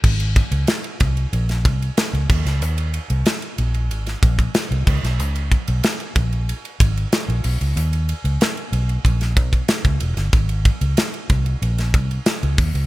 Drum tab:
CC |x-------------x-|--------------x-|----------------|----------------|
RD |-xxxxxxxxxxxxx-x|xxxxxxxxxxxxxx-x|xxxxxxxxxxxxxxxx|xxxxxxxxxxxxxxxx|
HH |----------------|p---------------|p-------------o-|p---------------|
SD |----o----o--o--o|----o----o--o--o|----o-------o---|----o----o--o--o|
BD |o-o---o---o---o-|----------oo--o-|--o---o---o-----|--------o-oo-o--|

CC |----------------|
RD |xxxxxxxxxxxxxxxx|
HH |--------------o-|
SD |----o----o--o---|
BD |o-o---o---o---o-|